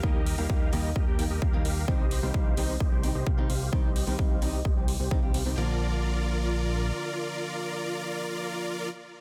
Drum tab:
HH |--oo--o---o---o-|--o---o---o---o-|--oo--o---o---o-|----------------|
BD |o---o---o---o---|o---o---o---o---|o---o---o---o---|----------------|

HH |----------------|
BD |----------------|